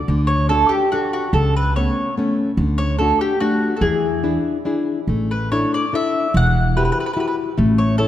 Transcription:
0.08 0.63 D2 medium
0.08 0.50 D3 medium
0.27 0.47 C#5 medium
0.49 0.84 D4 soft
0.49 0.84 F#4 soft
0.49 0.71 A4 medium
0.49 0.85 A4 soft
0.69 0.89 G4 medium
0.92 1.26 D4 soft
0.92 1.12 F#4 medium
0.92 1.26 F#4 soft
0.92 1.27 A4 soft
1.13 1.32 F#4 medium
1.33 1.87 C#2 medium
1.33 1.75 C#3 medium
1.33 1.56 A4 medium
1.56 1.76 B4 medium
1.76 2.10 A3 soft
1.76 2.10 B3 soft
1.76 2.10 C#4 soft
1.76 2.14 C#5 medium
2.18 2.50 A3 soft
2.18 2.50 B3 soft
2.18 2.51 C#4 soft
2.57 3.11 D2 medium
2.57 2.98 D3 medium
2.78 2.97 C#5 medium
2.99 3.33 A3 soft
2.99 3.33 D4 soft
2.99 3.34 F#4 soft
2.99 3.19 A4 medium
3.21 3.39 G4 medium
3.40 3.74 A3 soft
3.40 3.74 D4 soft
3.40 3.73 F#4 medium
3.40 3.75 F#4 soft
3.76 3.82 A4 soft
3.81 4.36 E2 medium
3.81 4.23 E3 medium
3.81 4.84 G#4 medium
4.24 4.57 D4 soft
4.24 4.58 E4 soft
4.24 4.58 G#4 soft
4.65 4.99 D4 soft
4.65 5.00 E4 soft
4.65 5.00 G#4 soft
5.07 5.63 A1 medium
5.07 5.50 A3 soft
5.31 5.49 B4 medium
5.52 5.85 D4 soft
5.52 5.85 E4 soft
5.52 5.86 A4 soft
5.52 5.74 C#5 medium
5.74 5.92 D5 medium
5.93 6.26 D4 soft
5.93 6.26 E4 soft
5.93 6.27 A4 soft
5.93 6.33 E5 medium
6.34 6.88 E1 medium
6.34 6.75 E3 medium
6.34 6.74 F#5 medium
6.77 7.10 E4 soft
6.77 7.10 F#4 soft
6.77 7.10 G4 soft
6.77 6.84 B4 medium
6.85 6.91 B4 soft
6.92 6.99 B4 medium
7.00 7.05 B4 soft
7.06 7.12 B4 medium
7.13 7.50 E4 soft
7.13 7.50 F#4 soft
7.13 7.50 G4 soft
7.13 7.19 B4 medium
7.20 7.26 B4 medium
7.28 7.35 B4 soft
7.58 8.08 A1 medium
7.58 7.98 A3 medium
7.78 7.97 C#5 medium
7.98 8.08 E4 soft
7.98 8.08 A4 medium
7.98 8.08 A4 soft
7.98 8.08 C#5 soft

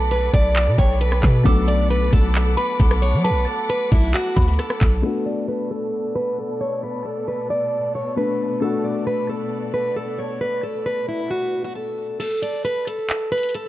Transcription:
0.00 0.30 B1 loud
0.00 1.41 F#3 medium
0.00 1.41 A3 medium
0.00 1.41 B3 medium
0.00 1.42 D4 medium
0.00 1.42 F#4 medium
0.00 5.00 A4 medium
0.00 1.42 F#5 medium
0.00 0.74 A5 loud
0.00 5.00 B5 medium
0.00 1.42 D6 medium
0.11 0.33 B4 medium
0.11 closed hi-hat medium
0.34 0.69 B1 loud
0.34 0.76 D5 medium
0.34 kick loud
0.34 closed hi-hat medium
0.56 clap loud
0.56 closed hi-hat medium
0.67 0.78 B2 loud
0.78 1.21 B1 loud
0.78 1.00 C#5 medium
0.78 1.00 G5 medium
0.78 kick medium
0.78 closed hi-hat medium
1.01 1.43 B4 medium
1.01 closed hi-hat medium
1.12 cross-stick loud
1.23 1.45 B2 loud
1.23 kick loud
1.23 clap medium
1.23 open hi-hat medium
1.44 2.10 B1 loud
1.44 4.99 F#3 medium
1.44 4.99 A3 medium
1.44 5.00 B3 medium
1.44 5.00 D4 medium
1.44 5.01 F#4 medium
1.44 1.67 A4 medium
1.44 5.00 F#5 medium
1.44 5.00 D6 medium
1.44 2.54 D6 loud
1.44 kick loud
1.44 closed hi-hat medium
1.68 1.89 D5 medium
1.68 closed hi-hat medium
1.90 2.12 B4 medium
1.90 closed hi-hat medium
2.13 2.56 B1 loud
2.13 2.55 A4 medium
2.13 kick loud
2.13 closed hi-hat medium
2.35 clap loud
2.35 closed hi-hat medium
2.57 2.79 B4 medium
2.57 2.79 B5 medium
2.57 closed hi-hat medium
2.80 3.15 B1 loud
2.80 3.01 A4 medium
2.80 kick medium
2.80 closed hi-hat medium
2.91 cross-stick loud
3.02 3.23 C#5 medium
3.02 closed hi-hat medium
3.13 3.32 F#3 loud
3.24 3.46 B4 loud
3.24 4.32 A5 loud
3.24 closed hi-hat medium
3.30 3.46 B1 loud
3.47 3.68 A4 medium
3.69 3.91 B4 medium
3.69 closed hi-hat medium
3.92 4.13 B1 loud
3.92 4.13 E4 medium
3.92 kick loud
3.92 closed hi-hat medium
4.14 4.46 F#4 medium
4.14 clap loud
4.14 closed hi-hat medium
4.36 4.58 D2 loud
4.36 4.58 B5 medium
4.36 kick loud
4.36 closed hi-hat medium
4.42 closed hi-hat medium
4.48 4.59 F#4 medium
4.48 closed hi-hat medium
4.53 closed hi-hat soft
4.59 5.01 A4 medium
4.59 cross-stick medium
4.59 closed hi-hat medium
4.70 cross-stick loud
4.81 5.03 B1 loud
4.81 kick loud
4.81 clap medium
4.81 open hi-hat medium
5.02 12.16 B2 medium
5.02 8.12 A3 medium
5.02 8.13 B3 medium
5.02 12.16 B3 medium
5.02 8.13 D4 medium
5.02 8.14 F#4 medium
5.02 5.25 A4 medium
5.02 10.37 A4 medium
5.02 8.58 D5 medium
5.26 5.47 D5 medium
5.48 5.70 B4 medium
5.71 6.13 A4 medium
6.16 6.37 B4 loud
6.38 6.59 A4 medium
6.61 6.82 C#5 medium
6.83 7.04 B4 medium
7.05 7.26 A4 medium
7.28 7.49 B4 medium
7.50 7.92 D5 medium
7.95 8.16 C#5 medium
8.16 8.59 A3 soft
8.16 8.60 B3 soft
8.16 8.61 D4 soft
8.16 8.62 A4 medium
8.16 8.59 B4 medium
8.61 12.15 A3 medium
8.61 12.16 B3 medium
8.61 12.17 D4 medium
8.61 12.17 F#4 medium
8.61 8.83 A4 medium
8.61 12.17 D5 medium
8.84 9.05 D5 medium
9.07 9.28 B4 medium
9.29 9.71 A4 medium
9.74 9.95 B4 medium
9.96 10.18 A4 medium
10.18 10.40 C#5 medium
10.41 10.62 B4 loud
10.41 12.18 B4 medium
10.63 10.85 A4 medium
10.86 11.07 B4 medium
11.08 11.30 E4 medium
11.31 11.62 F#4 medium
11.64 11.75 F#4 medium
11.75 12.17 A4 medium
12.20 12.41 A4 loud
12.20 closed hi-hat medium
12.20 crash medium
12.42 12.64 D5 medium
12.42 closed hi-hat medium
12.65 12.86 B4 medium
12.65 closed hi-hat medium
12.87 13.29 A4 medium
12.87 closed hi-hat medium
13.10 clap loud
13.10 closed hi-hat medium
13.32 13.53 B4 loud
13.32 closed hi-hat soft
13.38 closed hi-hat soft
13.43 closed hi-hat medium
13.49 closed hi-hat medium
13.55 13.68 A4 medium
13.55 closed hi-hat medium

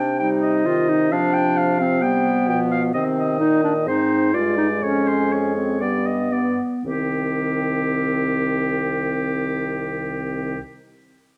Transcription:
0.00 1.08 C3 soft
0.00 0.22 D4 medium
0.00 0.18 G5 soft
0.19 0.68 G3 soft
0.19 0.68 D#4 medium
0.19 0.29 G5 soft
0.42 1.13 D#5 soft
0.66 1.14 D#3 soft
0.66 0.91 F4 medium
0.89 1.12 D#4 medium
1.12 2.50 C3 soft
1.12 2.04 F3 medium
1.12 1.79 D4 medium
1.12 1.35 F5 soft
1.33 1.58 G5 soft
1.57 1.79 F5 soft
1.79 2.04 C4 medium
1.79 2.03 F5 soft
2.02 2.50 G3 soft
2.02 2.93 B3 medium
2.02 2.48 G5 soft
2.49 2.94 B2 soft
2.49 2.94 F3 soft
2.49 2.59 G5 soft
2.71 2.81 F5 soft
2.94 3.39 C3 soft
2.94 3.89 D#3 medium
2.94 3.39 C4 medium
2.94 3.04 D#5 soft
3.18 3.86 D#5 soft
3.40 3.88 A#2 soft
3.40 3.62 D#4 medium
3.63 3.74 D4 medium
3.86 4.36 G#2 soft
3.86 4.34 C4 medium
3.86 4.36 D#4 medium
3.86 4.36 C5 soft
4.34 4.81 G2 soft
4.34 5.83 G#3 soft
4.34 4.57 F4 medium
4.34 4.84 D5 soft
4.58 4.68 D#4 medium
4.82 5.83 F2 soft
4.82 5.54 C#4 medium
4.82 5.09 C#5 soft
5.07 5.33 C5 soft
5.32 5.80 C#5 soft
5.56 5.80 C4 soft
5.80 6.59 G2 soft
5.80 6.31 G3 soft
5.80 6.83 B3 soft
5.80 6.07 D5 soft
6.06 6.34 D#5 soft
6.32 6.58 B3 soft
6.32 6.59 D5 soft
6.85 10.57 C2 soft
6.85 10.57 D#3 soft
6.85 10.57 C4 soft
6.85 10.59 G4 soft

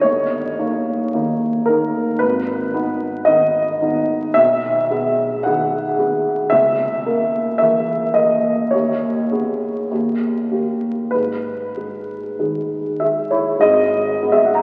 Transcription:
0.01 0.57 G1 soft
0.01 1.66 C#5 medium
0.59 1.09 A#3 soft
0.59 1.09 D#4 soft
1.14 1.64 D#3 soft
1.14 1.64 A#3 soft
1.14 1.64 D#4 soft
1.66 2.18 A#3 soft
1.66 2.18 D#4 soft
1.66 2.20 A#4 medium
2.19 2.73 G#1 soft
2.19 3.27 B4 medium
2.74 3.24 B3 soft
2.74 3.24 D#4 soft
3.25 3.77 D#3 soft
3.25 3.78 B3 soft
3.25 3.78 D#4 soft
3.25 3.80 D#5 medium
3.82 4.32 B3 soft
3.82 4.32 D#4 soft
4.34 4.89 B1 medium
4.34 5.44 E5 medium
4.90 5.41 B3 soft
4.90 5.41 G#4 soft
5.43 5.96 D#3 soft
5.43 5.96 B3 soft
5.43 5.96 G#4 soft
5.43 6.52 F#5 medium
5.99 6.48 B3 soft
5.99 6.49 G#4 soft
6.50 7.04 C#2 soft
6.50 7.57 E5 medium
7.06 7.57 A#3 soft
7.06 7.57 A#4 soft
7.58 8.12 E3 soft
7.58 8.12 A#3 soft
7.58 8.13 A#4 soft
7.58 8.15 E5 medium
8.14 8.69 A#3 soft
8.14 8.70 A#4 soft
8.14 8.72 D#5 medium
8.71 9.30 D#2 soft
8.71 11.11 C#5 medium
9.32 9.87 B3 soft
9.32 9.87 G#4 soft
9.91 10.49 D#2 soft
10.52 11.09 A#3 soft
10.52 11.09 G4 soft
11.11 11.75 G#2 soft
11.11 13.02 B4 medium
11.77 12.36 G#3 soft
11.77 12.36 G#4 soft
12.39 12.98 D#3 soft
12.39 12.99 G#3 soft
12.39 12.99 G#4 soft
13.00 13.60 G#3 soft
13.00 13.60 G#4 soft
13.00 13.32 E5 medium
13.31 13.60 E4 soft
13.31 13.62 C#5 medium
13.59 14.19 G#1 soft
13.59 14.18 G#2 soft
13.59 14.29 G#4 medium
13.59 14.32 D#5 medium
14.23 14.62 G#3 soft
14.23 14.62 B3 soft
14.32 14.46 G#4 soft
14.32 14.46 E5 medium
14.45 14.56 F#5 medium
14.55 14.62 A#5 medium

